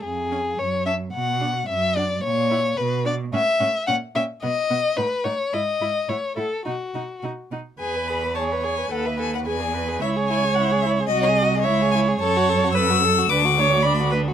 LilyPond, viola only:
\new Staff \with { instrumentName = "Viola" } { \time 2/4 \key b \dorian \tempo 4 = 109 r8 cis'8 r8 cis'8 | r8 d'8 r8 d'8 | r8 e'8 r8 d'8 | \key e \major cis'8 cis'8 cis'8 cis'8 |
b8 b8 dis'8 dis'8 | e'8 e'8 e'8 e'8 | dis'8 dis'8 dis'8 dis'8 | b'4 cis''4 |
b'4 gis'8 b'8 | cis''2 | dis''4 cis''4 | \key fis \minor cis''4 b'8 a'8 |
b'8 cis''8 d''8 b'8 | }